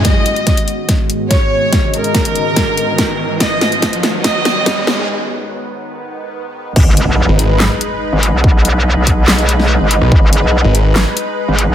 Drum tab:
CC |----------------|----------------|----------------|----------------|
HH |x-xxxxx-x-x-x---|x-xxxxx-x-x-x---|x-xxxxx-x-x-x---|----------------|
CP |----------------|----------------|----------------|----------------|
SD |o---o---o---o---|o---o---o---o---|o-o-o-o-o-o-o-o-|----------------|
BD |o---o---o---o---|o---o---o---o---|o---o---o---o---|----------------|

CC |x---------------|----------------|----------------|
HH |--x---x---x---x-|--x---x--xx---x-|--x---x---x---x-|
CP |--------x-------|--------x-------|--------x-------|
SD |--------o-------|--------o--o----|--------o-------|
BD |o---------------|o-----o---------|o---------------|